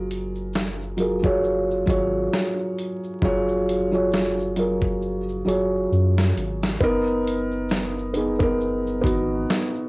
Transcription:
Already playing: F#1 F#3 F4 G#4 A#4
0.11 closed hi-hat, shaker
0.35 shaker
0.53 snare, shaker
0.82 shaker
0.97 F#3 F4 G#4 A#4, closed hi-hat, shaker
1.22 F#3 F4 G#4 C#5, kick
1.44 shaker
1.71 shaker
1.86 G#1 F#3 F4 G#4 C#5, kick
1.90 closed hi-hat, shaker
2.34 snare, shaker
2.59 shaker
2.79 closed hi-hat, shaker
3.04 shaker
3.22 F#1 F#3 F4 G#4 C#5, kick, shaker
3.49 shaker
3.69 closed hi-hat, shaker
3.91 F#3 F4 G#4 C#5, shaker
4.12 snare, shaker
4.40 shaker
4.56 F#3 F4 G#4 A#4, closed hi-hat, shaker
4.82 kick
5.02 shaker
5.29 shaker
5.45 F#1 F#3 F4 G#4 C#5, closed hi-hat, shaker
5.91 F#2, shaker
6.18 snare, shaker
6.36 G#1, closed hi-hat, shaker
6.62 snare, shaker
6.80 F#1 B3 D#4 A#4, kick, shaker
7.07 shaker
7.27 closed hi-hat, shaker
7.51 shaker
7.69 snare, shaker
7.98 shaker
8.14 B3 D#4 G#4, closed hi-hat, shaker
8.39 B3 D#4 A#4, kick
8.60 shaker
8.87 shaker
9.01 G#1 B3 D#4 F#4, kick
9.07 closed hi-hat, shaker
9.50 snare, shaker
9.75 shaker

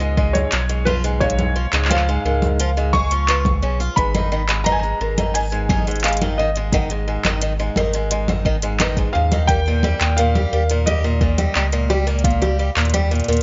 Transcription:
Already playing: C#2 D#5
0.00 G#2, cabasa
0.17 G#2, kick
0.33 C#5, closed hi-hat, low conga, cabasa
0.52 B1 F3, clap, closed hi-hat, cabasa
0.69 G#2, closed hi-hat, cabasa
0.85 F3 B4, low conga
1.04 G#2, closed hi-hat, cabasa
1.20 G#2 C#5 F5, kick, cabasa
1.30 closed hi-hat
1.39 closed hi-hat, low conga, cabasa
1.56 F3
1.73 C#2 G#2, clap, closed hi-hat, cabasa
1.85 clap
1.90 F3 F5, closed hi-hat, low conga, cabasa
1.97 clap
2.08 G#2, cabasa
2.25 C#2 G#2 A#4
2.42 low conga, cabasa
2.60 F3, closed hi-hat, cabasa
2.77 G#2, cabasa
2.93 G#3 C#6, kick, low conga
3.11 F3, closed hi-hat, cabasa
3.28 F4 B4, clap, closed hi-hat, cabasa
3.45 kick, closed hi-hat, low conga, cabasa
3.62 B1 C#3
3.80 F4, closed hi-hat, cabasa
3.96 G#1 G#2 B4 B5, kick, closed hi-hat, cabasa
4.14 D#3, closed hi-hat, low conga, cabasa
4.32 D#3
4.49 G#2, clap, closed hi-hat, cabasa
4.64 D#3 B4 A#5, closed hi-hat, low conga, cabasa
4.72 G#5
4.79 A#5
4.83 G#2, cabasa
5.00 G#1 G#2 A#4
5.18 D#3, closed hi-hat, low conga, cabasa
5.34 D#3 G#5, closed hi-hat, cabasa
5.37 cabasa
5.40 cabasa
5.43 cabasa
5.45 cabasa
5.47 cabasa
5.50 G#2, cabasa
5.52 cabasa
5.69 D#3, kick, low conga
5.74 low conga
5.78 low conga
5.83 low conga
5.87 G#2, closed hi-hat, cabasa
5.91 closed hi-hat
5.96 closed hi-hat
6.00 F5, closed hi-hat
6.04 G#2, clap, closed hi-hat, cabasa
6.08 closed hi-hat
6.13 closed hi-hat
6.17 closed hi-hat
6.22 D#3, closed hi-hat, low conga, cabasa
6.38 D#3 D#5
6.56 G#2, closed hi-hat
6.72 D#3 F#5, kick, closed hi-hat, low conga, cabasa
6.90 G#2, closed hi-hat, cabasa
7.08 G#2
7.24 G#1 D#3, clap, closed hi-hat, low conga, cabasa
7.42 D#3, closed hi-hat, cabasa
7.59 G#2, cabasa
7.76 G#1 D#3 A#4, low conga
7.94 G#2, closed hi-hat, cabasa
8.11 G#2, closed hi-hat, cabasa
8.28 D#3, low conga, cabasa
8.45 D#3, kick
8.62 G#2, closed hi-hat, cabasa
8.80 D#3 B4, clap, closed hi-hat, low conga, cabasa
8.97 G#2, kick, closed hi-hat, cabasa
9.13 D#2 G#2 F5
9.32 D#3, closed hi-hat, low conga, cabasa
9.47 G3 A#4 G5, kick, closed hi-hat, cabasa
9.66 A#2, closed hi-hat, cabasa
9.83 G3, low conga
10.00 D#2 A#2, clap, closed hi-hat, cabasa
10.17 A#2 A#4 F5, closed hi-hat, cabasa
10.35 G3, low conga, cabasa
10.52 D#2 G3 A#4
10.70 A#2, closed hi-hat, cabasa
10.86 G3 D#5, closed hi-hat, low conga, cabasa
11.04 A#2, cabasa
11.21 A#2, kick
11.38 G3, closed hi-hat, low conga, cabasa
11.55 C#2 G3, clap, cabasa
11.72 A#2, closed hi-hat, cabasa
11.90 G3, low conga
12.07 A#2, closed hi-hat, cabasa
12.19 closed hi-hat
12.24 A#2 F5, kick, closed hi-hat, cabasa
12.31 closed hi-hat
12.42 G3, closed hi-hat, low conga, cabasa
12.59 G3
12.76 D#2 A#2, clap, closed hi-hat, cabasa
12.81 closed hi-hat
12.85 closed hi-hat
12.90 closed hi-hat
12.94 G3, closed hi-hat, low conga, cabasa
13.11 A#2, closed hi-hat, cabasa
13.15 closed hi-hat
13.20 closed hi-hat
13.24 D#2, closed hi-hat
13.28 A#2 A#4, closed hi-hat
13.33 closed hi-hat
13.37 closed hi-hat

